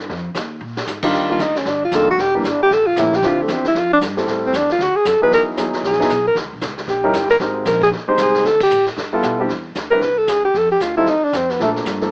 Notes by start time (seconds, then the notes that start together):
0.09 F2, brush sweep, kick, snare
0.35 D#2, kick, snare, hi-hat pedal
0.61 A#2
0.77 snare
0.86 G#2, snare, hi-hat pedal
1.02 D#3 G3 D4 F4, kick, crash
1.13 D#2, brush sweep, kick, snare
1.29 D#3 G3 A#3 D4 F4
1.39 D2 D#4, kick, snare, hi-hat pedal
1.55 C#4, snare
1.65 G1 D4, brush sweep, kick, snare
1.85 F4
1.91 F1 D#3 G3 A#3 D4 F4 A4, kick, snare, hi-hat pedal
2.10 F#4
2.17 E1 G4, brush sweep, kick, snare
2.34 E3 G3 A#3 D4 G4
2.43 G1, kick, snare, hi-hat pedal
2.49 D4
2.62 G4
2.70 A1 A4, brush sweep, kick, snare
2.86 F4
2.96 A#1 E3 A3 A#3 C#4 E4 G4, kick, snare, hi-hat pedal
3.13 G4, snare
3.22 D2 F3 C4 D4 E4 G4, brush sweep, kick, snare
3.26 F4
3.42 A3
3.48 E2, kick, snare, hi-hat pedal
3.52 C4
3.64 E4, snare
3.74 F2 F4, brush sweep, kick, snare
3.93 D4
4.01 G2, kick, snare, hi-hat pedal
4.17 G3 A3 C4 E4 A4, snare
4.27 A2, brush sweep, kick, snare
4.46 C4
4.53 E2 D4, kick, snare, hi-hat pedal
4.69 F4, snare
4.79 D2, brush sweep, kick, snare
4.83 F#4
4.95 G#4, muted upright bass stroke
5.05 F#2 A4, kick, snare, hi-hat pedal
5.21 F#3 B3 D#4 E4 G#4 B4, muted upright bass stroke
5.31 E2 A#4, brush sweep, kick, snare
5.48 muted upright bass stroke
5.57 D#2 F#3 B3 D#4 E4 G#4, kick, snare, hi-hat pedal
5.73 snare
5.83 A#1 G#4, brush sweep, kick, snare
5.92 snare
5.99 F#3 B3 D#4 E4 G#4, snare
6.09 B1, kick, snare, hi-hat pedal
6.27 A#4
6.35 D#2, brush sweep, kick, snare
6.44 C#2
6.53 A#1
6.61 C#2, kick, snare, hi-hat pedal
6.77 snare
6.87 A#1 G4, brush sweep, kick, snare
7.04 G3 C#4 D#4 E4 A#4
7.13 G1, kick, snare, hi-hat pedal
7.29 A#4, snare
7.40 G#1 G#3 C4 D#4 G4 A#4, brush sweep, kick, snare
7.65 A#1 A#4, kick, snare, hi-hat pedal
7.82 G#4, kick, snare
7.92 D#2, brush sweep, kick, snare
8.08 G#3 C4 D#4 G4 C5
8.17 C2, kick, snare, hi-hat pedal
8.22 G#4
8.34 snare
8.45 D2 A4, brush sweep, kick, snare
8.61 G4, kick, crash
8.71 A2, hi-hat pedal
8.86 snare
8.97 G2, brush sweep, kick, snare
9.13 G3 B3 E4 F4 A4
9.23 B2, kick, snare, hi-hat pedal
9.40 G3 C4 D4 E4 G4
9.48 E2, brush sweep, kick, snare
9.75 D2, kick, snare, hi-hat pedal
9.91 G3 C4 D4 E4 A#4 B4
10.01 C2 B4, brush sweep, kick, snare
10.18 A4
10.27 D2 G#4, kick, snare, hi-hat pedal
10.45 G4
10.54 F2 A4, brush sweep, kick, snare
10.72 G4
10.80 D2 F4, kick, snare, hi-hat pedal
10.97 G3 C4 D#4 E4 F4 A4
11.06 D#2 D#4, brush sweep, kick, snare
11.21 D4, muted upright bass stroke
11.33 F2 C4, kick, snare, hi-hat pedal
11.49 B3, snare
11.59 A#2 F3 A3 A#3 D4 A4, brush sweep, kick, snare
11.76 snare
11.85 G2, kick, snare, hi-hat pedal
12.01 F3 A3 A#3 D4 A4, snare